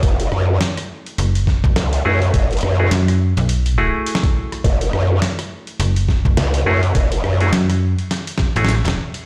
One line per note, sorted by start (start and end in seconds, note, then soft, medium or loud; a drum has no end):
0.00 0.30 F#1 loud
0.00 2.02 A3 loud
0.00 2.02 E4 medium
0.00 2.02 F#4 medium
0.00 2.02 G#4 loud
0.00 kick loud
0.00 closed hi-hat medium
0.20 closed hi-hat soft
0.32 0.59 F#2 medium
0.32 cross-stick soft
0.61 snare loud
0.61 closed hi-hat medium
0.77 cross-stick soft
0.77 closed hi-hat medium
1.06 closed hi-hat soft
1.18 1.61 F#1 medium
1.18 closed hi-hat medium
1.35 closed hi-hat medium
1.47 kick medium
1.47 snare soft
1.64 1.74 F#1 loud
1.64 kick loud
1.76 2.03 C#2 loud
1.76 snare loud
1.76 closed hi-hat medium
1.93 closed hi-hat medium
2.05 2.32 F#2 loud
2.05 2.19 A3 loud
2.05 2.19 E4 medium
2.05 2.19 F#4 medium
2.05 2.19 G#4 loud
2.22 closed hi-hat soft
2.34 2.61 F#1 loud
2.34 kick loud
2.34 closed hi-hat medium
2.51 closed hi-hat soft
2.53 closed hi-hat soft
2.57 closed hi-hat soft
2.59 closed hi-hat soft
2.61 2.90 F#2 loud
2.61 cross-stick medium
2.61 closed hi-hat soft
2.79 2.90 A3 medium
2.79 2.90 E4 medium
2.79 2.90 F#4 medium
2.79 2.90 G#4 medium
2.91 3.34 F#2 loud
2.91 snare loud
2.91 closed hi-hat medium
3.08 cross-stick soft
3.08 closed hi-hat soft
3.37 3.92 B1 loud
3.37 closed hi-hat soft
3.49 closed hi-hat medium
3.66 closed hi-hat soft
3.78 6.63 A3 loud
3.78 6.63 E4 medium
3.78 6.63 F#4 medium
3.78 6.63 G#4 loud
4.06 closed hi-hat medium
4.15 snare loud
4.23 kick loud
4.23 closed hi-hat medium
4.52 cross-stick soft
4.52 closed hi-hat soft
4.64 4.91 F#1 loud
4.64 kick loud
4.64 closed hi-hat medium
4.81 closed hi-hat medium
4.93 5.20 F#2 loud
4.93 cross-stick medium
5.22 snare loud
5.22 closed hi-hat medium
5.39 cross-stick soft
5.39 closed hi-hat medium
5.67 closed hi-hat soft
5.80 6.22 F#1 medium
5.80 closed hi-hat medium
5.96 closed hi-hat medium
6.08 kick medium
6.08 snare soft
6.25 6.35 F#1 loud
6.25 kick loud
6.37 6.64 C#2 loud
6.37 snare loud
6.37 closed hi-hat medium
6.54 closed hi-hat medium
6.66 6.93 F#2 loud
6.66 6.81 A3 loud
6.66 6.81 E4 medium
6.66 6.81 F#4 medium
6.66 6.81 G#4 loud
6.83 closed hi-hat soft
6.95 7.22 F#1 loud
6.95 kick loud
6.95 closed hi-hat medium
7.12 closed hi-hat medium
7.24 7.51 F#2 loud
7.24 cross-stick medium
7.41 7.51 A3 medium
7.41 7.51 E4 medium
7.41 7.51 F#4 medium
7.41 7.51 G#4 medium
7.41 closed hi-hat soft
7.53 7.96 F#2 loud
7.53 snare loud
7.53 closed hi-hat medium
7.70 cross-stick soft
7.70 closed hi-hat medium
7.99 closed hi-hat soft
8.11 snare medium
8.11 closed hi-hat medium
8.27 closed hi-hat medium
8.38 kick medium
8.38 snare medium
8.56 8.82 A1 loud
8.56 8.75 A3 loud
8.56 8.75 E4 medium
8.56 8.75 F#4 medium
8.56 8.75 G#4 loud
8.56 closed hi-hat soft
8.65 snare medium
8.69 snare medium
8.69 closed hi-hat medium
8.85 8.95 E1 loud
8.85 snare loud
8.85 closed hi-hat medium
9.14 closed hi-hat soft